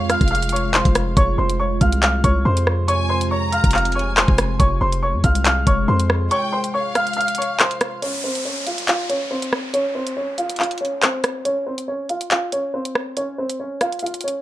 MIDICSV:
0, 0, Header, 1, 7, 480
1, 0, Start_track
1, 0, Key_signature, -4, "minor"
1, 0, Tempo, 428571
1, 1308, Time_signature, 4, 2, 24, 8
1, 16147, End_track
2, 0, Start_track
2, 0, Title_t, "Violin section"
2, 0, Program_c, 0, 48
2, 0, Note_on_c, 0, 77, 100
2, 1264, Note_off_c, 0, 77, 0
2, 3230, Note_on_c, 0, 80, 104
2, 3680, Note_off_c, 0, 80, 0
2, 3709, Note_on_c, 0, 82, 98
2, 4385, Note_off_c, 0, 82, 0
2, 4430, Note_on_c, 0, 80, 78
2, 5106, Note_off_c, 0, 80, 0
2, 7065, Note_on_c, 0, 79, 101
2, 7518, Note_off_c, 0, 79, 0
2, 7548, Note_on_c, 0, 77, 103
2, 8943, Note_off_c, 0, 77, 0
2, 16147, End_track
3, 0, Start_track
3, 0, Title_t, "Upright piano"
3, 0, Program_c, 1, 0
3, 108, Note_on_c, 1, 89, 91
3, 118, Note_on_c, 1, 77, 62
3, 308, Note_off_c, 1, 89, 0
3, 314, Note_off_c, 1, 77, 0
3, 346, Note_on_c, 1, 89, 97
3, 354, Note_on_c, 1, 77, 75
3, 547, Note_off_c, 1, 89, 0
3, 552, Note_off_c, 1, 77, 0
3, 587, Note_on_c, 1, 85, 79
3, 597, Note_on_c, 1, 73, 65
3, 788, Note_off_c, 1, 85, 0
3, 793, Note_off_c, 1, 73, 0
3, 825, Note_on_c, 1, 84, 85
3, 833, Note_on_c, 1, 72, 68
3, 1278, Note_off_c, 1, 84, 0
3, 1282, Note_off_c, 1, 72, 0
3, 1307, Note_on_c, 1, 85, 104
3, 1316, Note_on_c, 1, 73, 84
3, 1508, Note_off_c, 1, 85, 0
3, 1513, Note_off_c, 1, 73, 0
3, 1546, Note_on_c, 1, 84, 79
3, 1556, Note_on_c, 1, 72, 64
3, 1747, Note_off_c, 1, 84, 0
3, 1753, Note_off_c, 1, 72, 0
3, 1787, Note_on_c, 1, 85, 85
3, 1797, Note_on_c, 1, 73, 72
3, 1988, Note_off_c, 1, 85, 0
3, 1994, Note_off_c, 1, 73, 0
3, 2026, Note_on_c, 1, 89, 76
3, 2035, Note_on_c, 1, 77, 62
3, 2227, Note_off_c, 1, 89, 0
3, 2233, Note_off_c, 1, 77, 0
3, 2268, Note_on_c, 1, 89, 87
3, 2277, Note_on_c, 1, 77, 70
3, 2468, Note_off_c, 1, 89, 0
3, 2473, Note_off_c, 1, 77, 0
3, 2508, Note_on_c, 1, 85, 92
3, 2516, Note_on_c, 1, 73, 74
3, 2708, Note_off_c, 1, 85, 0
3, 2713, Note_off_c, 1, 73, 0
3, 2746, Note_on_c, 1, 84, 82
3, 2755, Note_on_c, 1, 72, 72
3, 3198, Note_off_c, 1, 84, 0
3, 3203, Note_off_c, 1, 72, 0
3, 3225, Note_on_c, 1, 85, 106
3, 3235, Note_on_c, 1, 73, 85
3, 3427, Note_off_c, 1, 85, 0
3, 3432, Note_off_c, 1, 73, 0
3, 3466, Note_on_c, 1, 84, 81
3, 3475, Note_on_c, 1, 72, 66
3, 3667, Note_off_c, 1, 84, 0
3, 3672, Note_off_c, 1, 72, 0
3, 3707, Note_on_c, 1, 85, 87
3, 3716, Note_on_c, 1, 73, 69
3, 3908, Note_off_c, 1, 85, 0
3, 3913, Note_off_c, 1, 73, 0
3, 3946, Note_on_c, 1, 89, 86
3, 3956, Note_on_c, 1, 77, 67
3, 4147, Note_off_c, 1, 89, 0
3, 4153, Note_off_c, 1, 77, 0
3, 4191, Note_on_c, 1, 89, 94
3, 4199, Note_on_c, 1, 77, 73
3, 4390, Note_off_c, 1, 89, 0
3, 4395, Note_off_c, 1, 77, 0
3, 4428, Note_on_c, 1, 85, 76
3, 4437, Note_on_c, 1, 73, 60
3, 4628, Note_off_c, 1, 85, 0
3, 4633, Note_off_c, 1, 73, 0
3, 4669, Note_on_c, 1, 84, 87
3, 4677, Note_on_c, 1, 72, 64
3, 5119, Note_off_c, 1, 84, 0
3, 5124, Note_off_c, 1, 72, 0
3, 5145, Note_on_c, 1, 85, 97
3, 5154, Note_on_c, 1, 73, 75
3, 5346, Note_off_c, 1, 85, 0
3, 5352, Note_off_c, 1, 73, 0
3, 5387, Note_on_c, 1, 84, 86
3, 5394, Note_on_c, 1, 72, 59
3, 5587, Note_off_c, 1, 84, 0
3, 5592, Note_off_c, 1, 72, 0
3, 5629, Note_on_c, 1, 85, 87
3, 5637, Note_on_c, 1, 73, 69
3, 5829, Note_off_c, 1, 85, 0
3, 5834, Note_off_c, 1, 73, 0
3, 5866, Note_on_c, 1, 89, 85
3, 5875, Note_on_c, 1, 77, 58
3, 6067, Note_off_c, 1, 89, 0
3, 6072, Note_off_c, 1, 77, 0
3, 6110, Note_on_c, 1, 89, 92
3, 6118, Note_on_c, 1, 77, 72
3, 6309, Note_off_c, 1, 89, 0
3, 6314, Note_off_c, 1, 77, 0
3, 6351, Note_on_c, 1, 85, 94
3, 6359, Note_on_c, 1, 73, 70
3, 6550, Note_off_c, 1, 85, 0
3, 6555, Note_off_c, 1, 73, 0
3, 6587, Note_on_c, 1, 84, 89
3, 6595, Note_on_c, 1, 72, 68
3, 7038, Note_off_c, 1, 84, 0
3, 7043, Note_off_c, 1, 72, 0
3, 7069, Note_on_c, 1, 85, 112
3, 7079, Note_on_c, 1, 73, 85
3, 7269, Note_off_c, 1, 85, 0
3, 7274, Note_off_c, 1, 73, 0
3, 7309, Note_on_c, 1, 84, 83
3, 7318, Note_on_c, 1, 72, 63
3, 7509, Note_off_c, 1, 84, 0
3, 7514, Note_off_c, 1, 72, 0
3, 7548, Note_on_c, 1, 85, 81
3, 7556, Note_on_c, 1, 73, 77
3, 7748, Note_off_c, 1, 85, 0
3, 7753, Note_off_c, 1, 73, 0
3, 7789, Note_on_c, 1, 89, 92
3, 7798, Note_on_c, 1, 77, 63
3, 7989, Note_off_c, 1, 89, 0
3, 7994, Note_off_c, 1, 77, 0
3, 8026, Note_on_c, 1, 89, 95
3, 8035, Note_on_c, 1, 77, 75
3, 8227, Note_off_c, 1, 89, 0
3, 8232, Note_off_c, 1, 77, 0
3, 8266, Note_on_c, 1, 85, 79
3, 8274, Note_on_c, 1, 73, 65
3, 8467, Note_off_c, 1, 85, 0
3, 8472, Note_off_c, 1, 73, 0
3, 8507, Note_on_c, 1, 84, 83
3, 8515, Note_on_c, 1, 72, 67
3, 8959, Note_off_c, 1, 84, 0
3, 8963, Note_off_c, 1, 72, 0
3, 8987, Note_on_c, 1, 73, 99
3, 8997, Note_on_c, 1, 61, 82
3, 9188, Note_off_c, 1, 73, 0
3, 9193, Note_off_c, 1, 61, 0
3, 9228, Note_on_c, 1, 72, 76
3, 9238, Note_on_c, 1, 60, 62
3, 9428, Note_off_c, 1, 72, 0
3, 9434, Note_off_c, 1, 60, 0
3, 9467, Note_on_c, 1, 73, 87
3, 9477, Note_on_c, 1, 61, 73
3, 9668, Note_off_c, 1, 73, 0
3, 9673, Note_off_c, 1, 61, 0
3, 9705, Note_on_c, 1, 77, 74
3, 9714, Note_on_c, 1, 65, 58
3, 9907, Note_off_c, 1, 77, 0
3, 9912, Note_off_c, 1, 65, 0
3, 9947, Note_on_c, 1, 77, 83
3, 9956, Note_on_c, 1, 65, 69
3, 10148, Note_off_c, 1, 77, 0
3, 10153, Note_off_c, 1, 65, 0
3, 10186, Note_on_c, 1, 73, 93
3, 10195, Note_on_c, 1, 61, 69
3, 10387, Note_off_c, 1, 73, 0
3, 10392, Note_off_c, 1, 61, 0
3, 10424, Note_on_c, 1, 72, 80
3, 10433, Note_on_c, 1, 60, 70
3, 10877, Note_off_c, 1, 72, 0
3, 10882, Note_off_c, 1, 60, 0
3, 10904, Note_on_c, 1, 73, 104
3, 10913, Note_on_c, 1, 61, 83
3, 11106, Note_off_c, 1, 73, 0
3, 11111, Note_off_c, 1, 61, 0
3, 11145, Note_on_c, 1, 72, 80
3, 11153, Note_on_c, 1, 60, 66
3, 11346, Note_off_c, 1, 72, 0
3, 11351, Note_off_c, 1, 60, 0
3, 11386, Note_on_c, 1, 73, 84
3, 11396, Note_on_c, 1, 61, 66
3, 11587, Note_off_c, 1, 73, 0
3, 11593, Note_off_c, 1, 61, 0
3, 11626, Note_on_c, 1, 77, 80
3, 11634, Note_on_c, 1, 65, 66
3, 11827, Note_off_c, 1, 77, 0
3, 11832, Note_off_c, 1, 65, 0
3, 11866, Note_on_c, 1, 77, 88
3, 11875, Note_on_c, 1, 65, 68
3, 12067, Note_off_c, 1, 77, 0
3, 12072, Note_off_c, 1, 65, 0
3, 12105, Note_on_c, 1, 73, 75
3, 12113, Note_on_c, 1, 61, 59
3, 12306, Note_off_c, 1, 73, 0
3, 12312, Note_off_c, 1, 61, 0
3, 12346, Note_on_c, 1, 72, 82
3, 12355, Note_on_c, 1, 60, 64
3, 12798, Note_off_c, 1, 72, 0
3, 12803, Note_off_c, 1, 60, 0
3, 12825, Note_on_c, 1, 73, 94
3, 12834, Note_on_c, 1, 61, 78
3, 13027, Note_off_c, 1, 73, 0
3, 13032, Note_off_c, 1, 61, 0
3, 13065, Note_on_c, 1, 72, 82
3, 13074, Note_on_c, 1, 60, 59
3, 13267, Note_off_c, 1, 72, 0
3, 13272, Note_off_c, 1, 60, 0
3, 13306, Note_on_c, 1, 73, 89
3, 13315, Note_on_c, 1, 61, 66
3, 13507, Note_off_c, 1, 73, 0
3, 13512, Note_off_c, 1, 61, 0
3, 13547, Note_on_c, 1, 77, 79
3, 13556, Note_on_c, 1, 65, 57
3, 13748, Note_off_c, 1, 77, 0
3, 13753, Note_off_c, 1, 65, 0
3, 13788, Note_on_c, 1, 77, 85
3, 13796, Note_on_c, 1, 65, 71
3, 13988, Note_off_c, 1, 77, 0
3, 13993, Note_off_c, 1, 65, 0
3, 14029, Note_on_c, 1, 73, 92
3, 14038, Note_on_c, 1, 61, 70
3, 14229, Note_off_c, 1, 73, 0
3, 14234, Note_off_c, 1, 61, 0
3, 14267, Note_on_c, 1, 72, 88
3, 14275, Note_on_c, 1, 60, 64
3, 14718, Note_off_c, 1, 72, 0
3, 14723, Note_off_c, 1, 60, 0
3, 14750, Note_on_c, 1, 73, 108
3, 14758, Note_on_c, 1, 61, 81
3, 14949, Note_off_c, 1, 73, 0
3, 14954, Note_off_c, 1, 61, 0
3, 14990, Note_on_c, 1, 72, 83
3, 14999, Note_on_c, 1, 60, 64
3, 15189, Note_off_c, 1, 72, 0
3, 15195, Note_off_c, 1, 60, 0
3, 15228, Note_on_c, 1, 73, 80
3, 15237, Note_on_c, 1, 61, 75
3, 15428, Note_off_c, 1, 73, 0
3, 15434, Note_off_c, 1, 61, 0
3, 15471, Note_on_c, 1, 77, 89
3, 15480, Note_on_c, 1, 65, 62
3, 15670, Note_off_c, 1, 77, 0
3, 15675, Note_off_c, 1, 65, 0
3, 15709, Note_on_c, 1, 77, 93
3, 15718, Note_on_c, 1, 65, 73
3, 15909, Note_off_c, 1, 77, 0
3, 15914, Note_off_c, 1, 65, 0
3, 15949, Note_on_c, 1, 73, 76
3, 15958, Note_on_c, 1, 61, 64
3, 16147, Note_off_c, 1, 61, 0
3, 16147, Note_off_c, 1, 73, 0
3, 16147, End_track
4, 0, Start_track
4, 0, Title_t, "Analog synth pad"
4, 0, Program_c, 2, 89
4, 0, Note_on_c, 2, 48, 87
4, 0, Note_on_c, 2, 56, 81
4, 0, Note_on_c, 2, 65, 97
4, 1264, Note_off_c, 2, 48, 0
4, 1308, Note_on_c, 2, 48, 86
4, 5104, Note_off_c, 2, 56, 0
4, 5149, Note_on_c, 2, 56, 77
4, 8943, Note_off_c, 2, 48, 0
4, 8943, Note_off_c, 2, 65, 0
4, 8950, Note_off_c, 2, 56, 0
4, 16147, End_track
5, 0, Start_track
5, 0, Title_t, "808-style bass"
5, 0, Program_c, 3, 38
5, 0, Note_on_c, 3, 41, 110
5, 190, Note_off_c, 3, 41, 0
5, 234, Note_on_c, 3, 29, 102
5, 926, Note_off_c, 3, 29, 0
5, 955, Note_on_c, 3, 29, 106
5, 1294, Note_off_c, 3, 29, 0
5, 1308, Note_on_c, 3, 29, 108
5, 1539, Note_off_c, 3, 29, 0
5, 1548, Note_on_c, 3, 29, 108
5, 2009, Note_off_c, 3, 29, 0
5, 2030, Note_on_c, 3, 36, 107
5, 2490, Note_off_c, 3, 36, 0
5, 2508, Note_on_c, 3, 36, 109
5, 2738, Note_off_c, 3, 36, 0
5, 2749, Note_on_c, 3, 41, 110
5, 4031, Note_off_c, 3, 41, 0
5, 4075, Note_on_c, 3, 29, 110
5, 4766, Note_off_c, 3, 29, 0
5, 4796, Note_on_c, 3, 29, 102
5, 5134, Note_off_c, 3, 29, 0
5, 5149, Note_on_c, 3, 29, 108
5, 5379, Note_off_c, 3, 29, 0
5, 5388, Note_on_c, 3, 29, 110
5, 5754, Note_on_c, 3, 41, 102
5, 5771, Note_off_c, 3, 29, 0
5, 5862, Note_off_c, 3, 41, 0
5, 5869, Note_on_c, 3, 36, 108
5, 6329, Note_off_c, 3, 36, 0
5, 6348, Note_on_c, 3, 29, 104
5, 6578, Note_off_c, 3, 29, 0
5, 6588, Note_on_c, 3, 41, 111
5, 7048, Note_off_c, 3, 41, 0
5, 16147, End_track
6, 0, Start_track
6, 0, Title_t, "Downlifter"
6, 0, Program_c, 4, 103
6, 8988, Note_on_c, 4, 60, 89
6, 12828, Note_off_c, 4, 60, 0
6, 16147, End_track
7, 0, Start_track
7, 0, Title_t, "Drums"
7, 107, Note_on_c, 9, 42, 77
7, 108, Note_on_c, 9, 37, 90
7, 219, Note_off_c, 9, 42, 0
7, 220, Note_off_c, 9, 37, 0
7, 234, Note_on_c, 9, 36, 99
7, 235, Note_on_c, 9, 42, 50
7, 310, Note_off_c, 9, 42, 0
7, 310, Note_on_c, 9, 42, 58
7, 346, Note_off_c, 9, 36, 0
7, 390, Note_off_c, 9, 42, 0
7, 390, Note_on_c, 9, 42, 67
7, 476, Note_off_c, 9, 42, 0
7, 476, Note_on_c, 9, 42, 73
7, 551, Note_off_c, 9, 42, 0
7, 551, Note_on_c, 9, 42, 80
7, 630, Note_off_c, 9, 42, 0
7, 630, Note_on_c, 9, 42, 89
7, 742, Note_off_c, 9, 42, 0
7, 827, Note_on_c, 9, 42, 64
7, 828, Note_on_c, 9, 39, 115
7, 939, Note_off_c, 9, 42, 0
7, 940, Note_off_c, 9, 39, 0
7, 955, Note_on_c, 9, 36, 108
7, 955, Note_on_c, 9, 42, 66
7, 1066, Note_off_c, 9, 42, 0
7, 1066, Note_on_c, 9, 42, 87
7, 1067, Note_off_c, 9, 36, 0
7, 1069, Note_on_c, 9, 37, 96
7, 1178, Note_off_c, 9, 42, 0
7, 1181, Note_off_c, 9, 37, 0
7, 1307, Note_on_c, 9, 42, 78
7, 1308, Note_on_c, 9, 36, 123
7, 1419, Note_off_c, 9, 42, 0
7, 1420, Note_off_c, 9, 36, 0
7, 1675, Note_on_c, 9, 42, 76
7, 1787, Note_off_c, 9, 42, 0
7, 2027, Note_on_c, 9, 42, 75
7, 2029, Note_on_c, 9, 36, 92
7, 2139, Note_off_c, 9, 42, 0
7, 2141, Note_off_c, 9, 36, 0
7, 2156, Note_on_c, 9, 42, 83
7, 2268, Note_off_c, 9, 42, 0
7, 2268, Note_on_c, 9, 42, 75
7, 2270, Note_on_c, 9, 39, 126
7, 2380, Note_off_c, 9, 42, 0
7, 2382, Note_off_c, 9, 39, 0
7, 2509, Note_on_c, 9, 36, 90
7, 2509, Note_on_c, 9, 42, 76
7, 2621, Note_off_c, 9, 36, 0
7, 2621, Note_off_c, 9, 42, 0
7, 2876, Note_on_c, 9, 42, 87
7, 2988, Note_off_c, 9, 42, 0
7, 2990, Note_on_c, 9, 37, 94
7, 3102, Note_off_c, 9, 37, 0
7, 3229, Note_on_c, 9, 42, 76
7, 3341, Note_off_c, 9, 42, 0
7, 3596, Note_on_c, 9, 42, 77
7, 3708, Note_off_c, 9, 42, 0
7, 3948, Note_on_c, 9, 42, 75
7, 4060, Note_off_c, 9, 42, 0
7, 4075, Note_on_c, 9, 36, 100
7, 4076, Note_on_c, 9, 42, 85
7, 4151, Note_off_c, 9, 42, 0
7, 4151, Note_on_c, 9, 42, 80
7, 4187, Note_off_c, 9, 36, 0
7, 4190, Note_on_c, 9, 39, 72
7, 4230, Note_off_c, 9, 42, 0
7, 4230, Note_on_c, 9, 42, 71
7, 4302, Note_off_c, 9, 39, 0
7, 4316, Note_off_c, 9, 42, 0
7, 4316, Note_on_c, 9, 42, 65
7, 4391, Note_off_c, 9, 42, 0
7, 4391, Note_on_c, 9, 42, 57
7, 4472, Note_off_c, 9, 42, 0
7, 4472, Note_on_c, 9, 42, 51
7, 4584, Note_off_c, 9, 42, 0
7, 4669, Note_on_c, 9, 42, 75
7, 4670, Note_on_c, 9, 39, 123
7, 4781, Note_off_c, 9, 42, 0
7, 4782, Note_off_c, 9, 39, 0
7, 4796, Note_on_c, 9, 36, 106
7, 4908, Note_off_c, 9, 36, 0
7, 4908, Note_on_c, 9, 42, 88
7, 4910, Note_on_c, 9, 37, 99
7, 5020, Note_off_c, 9, 42, 0
7, 5022, Note_off_c, 9, 37, 0
7, 5149, Note_on_c, 9, 36, 117
7, 5149, Note_on_c, 9, 42, 76
7, 5261, Note_off_c, 9, 36, 0
7, 5261, Note_off_c, 9, 42, 0
7, 5516, Note_on_c, 9, 42, 75
7, 5628, Note_off_c, 9, 42, 0
7, 5866, Note_on_c, 9, 42, 77
7, 5869, Note_on_c, 9, 36, 91
7, 5978, Note_off_c, 9, 42, 0
7, 5981, Note_off_c, 9, 36, 0
7, 5995, Note_on_c, 9, 42, 84
7, 6106, Note_off_c, 9, 42, 0
7, 6106, Note_on_c, 9, 42, 75
7, 6108, Note_on_c, 9, 39, 121
7, 6218, Note_off_c, 9, 42, 0
7, 6220, Note_off_c, 9, 39, 0
7, 6347, Note_on_c, 9, 42, 81
7, 6348, Note_on_c, 9, 36, 93
7, 6459, Note_off_c, 9, 42, 0
7, 6460, Note_off_c, 9, 36, 0
7, 6715, Note_on_c, 9, 42, 86
7, 6827, Note_off_c, 9, 42, 0
7, 6829, Note_on_c, 9, 37, 99
7, 6941, Note_off_c, 9, 37, 0
7, 7068, Note_on_c, 9, 42, 76
7, 7180, Note_off_c, 9, 42, 0
7, 7435, Note_on_c, 9, 42, 74
7, 7547, Note_off_c, 9, 42, 0
7, 7787, Note_on_c, 9, 42, 76
7, 7788, Note_on_c, 9, 37, 88
7, 7899, Note_off_c, 9, 42, 0
7, 7900, Note_off_c, 9, 37, 0
7, 7915, Note_on_c, 9, 42, 52
7, 7990, Note_off_c, 9, 42, 0
7, 7990, Note_on_c, 9, 42, 59
7, 8071, Note_off_c, 9, 42, 0
7, 8071, Note_on_c, 9, 42, 68
7, 8155, Note_off_c, 9, 42, 0
7, 8155, Note_on_c, 9, 42, 75
7, 8229, Note_off_c, 9, 42, 0
7, 8229, Note_on_c, 9, 42, 82
7, 8309, Note_off_c, 9, 42, 0
7, 8309, Note_on_c, 9, 42, 90
7, 8421, Note_off_c, 9, 42, 0
7, 8506, Note_on_c, 9, 42, 63
7, 8507, Note_on_c, 9, 39, 118
7, 8618, Note_off_c, 9, 42, 0
7, 8619, Note_off_c, 9, 39, 0
7, 8634, Note_on_c, 9, 42, 66
7, 8745, Note_off_c, 9, 42, 0
7, 8745, Note_on_c, 9, 42, 85
7, 8748, Note_on_c, 9, 37, 96
7, 8857, Note_off_c, 9, 42, 0
7, 8860, Note_off_c, 9, 37, 0
7, 8987, Note_on_c, 9, 42, 75
7, 9099, Note_off_c, 9, 42, 0
7, 9355, Note_on_c, 9, 42, 74
7, 9467, Note_off_c, 9, 42, 0
7, 9706, Note_on_c, 9, 42, 74
7, 9818, Note_off_c, 9, 42, 0
7, 9834, Note_on_c, 9, 42, 81
7, 9946, Note_off_c, 9, 42, 0
7, 9946, Note_on_c, 9, 42, 73
7, 9948, Note_on_c, 9, 39, 120
7, 10058, Note_off_c, 9, 42, 0
7, 10060, Note_off_c, 9, 39, 0
7, 10187, Note_on_c, 9, 42, 78
7, 10299, Note_off_c, 9, 42, 0
7, 10554, Note_on_c, 9, 42, 83
7, 10666, Note_off_c, 9, 42, 0
7, 10669, Note_on_c, 9, 37, 96
7, 10781, Note_off_c, 9, 37, 0
7, 10906, Note_on_c, 9, 42, 78
7, 11018, Note_off_c, 9, 42, 0
7, 11274, Note_on_c, 9, 42, 74
7, 11386, Note_off_c, 9, 42, 0
7, 11625, Note_on_c, 9, 42, 75
7, 11737, Note_off_c, 9, 42, 0
7, 11755, Note_on_c, 9, 42, 82
7, 11830, Note_off_c, 9, 42, 0
7, 11830, Note_on_c, 9, 42, 75
7, 11869, Note_on_c, 9, 39, 72
7, 11910, Note_off_c, 9, 42, 0
7, 11910, Note_on_c, 9, 42, 71
7, 11981, Note_off_c, 9, 39, 0
7, 11995, Note_off_c, 9, 42, 0
7, 11995, Note_on_c, 9, 42, 62
7, 12070, Note_off_c, 9, 42, 0
7, 12070, Note_on_c, 9, 42, 56
7, 12149, Note_off_c, 9, 42, 0
7, 12149, Note_on_c, 9, 42, 48
7, 12261, Note_off_c, 9, 42, 0
7, 12346, Note_on_c, 9, 42, 71
7, 12347, Note_on_c, 9, 39, 119
7, 12458, Note_off_c, 9, 42, 0
7, 12459, Note_off_c, 9, 39, 0
7, 12585, Note_on_c, 9, 42, 85
7, 12588, Note_on_c, 9, 37, 96
7, 12697, Note_off_c, 9, 42, 0
7, 12700, Note_off_c, 9, 37, 0
7, 12827, Note_on_c, 9, 42, 74
7, 12939, Note_off_c, 9, 42, 0
7, 13193, Note_on_c, 9, 42, 75
7, 13305, Note_off_c, 9, 42, 0
7, 13545, Note_on_c, 9, 42, 74
7, 13657, Note_off_c, 9, 42, 0
7, 13673, Note_on_c, 9, 42, 81
7, 13785, Note_off_c, 9, 42, 0
7, 13785, Note_on_c, 9, 42, 72
7, 13787, Note_on_c, 9, 39, 122
7, 13897, Note_off_c, 9, 42, 0
7, 13899, Note_off_c, 9, 39, 0
7, 14026, Note_on_c, 9, 42, 78
7, 14138, Note_off_c, 9, 42, 0
7, 14394, Note_on_c, 9, 42, 82
7, 14506, Note_off_c, 9, 42, 0
7, 14508, Note_on_c, 9, 37, 95
7, 14620, Note_off_c, 9, 37, 0
7, 14747, Note_on_c, 9, 42, 73
7, 14859, Note_off_c, 9, 42, 0
7, 15115, Note_on_c, 9, 42, 73
7, 15227, Note_off_c, 9, 42, 0
7, 15466, Note_on_c, 9, 42, 73
7, 15467, Note_on_c, 9, 37, 85
7, 15578, Note_off_c, 9, 42, 0
7, 15579, Note_off_c, 9, 37, 0
7, 15595, Note_on_c, 9, 42, 52
7, 15672, Note_off_c, 9, 42, 0
7, 15672, Note_on_c, 9, 42, 55
7, 15752, Note_off_c, 9, 42, 0
7, 15752, Note_on_c, 9, 42, 67
7, 15837, Note_off_c, 9, 42, 0
7, 15837, Note_on_c, 9, 42, 73
7, 15911, Note_off_c, 9, 42, 0
7, 15911, Note_on_c, 9, 42, 76
7, 15991, Note_off_c, 9, 42, 0
7, 15991, Note_on_c, 9, 42, 86
7, 16103, Note_off_c, 9, 42, 0
7, 16147, End_track
0, 0, End_of_file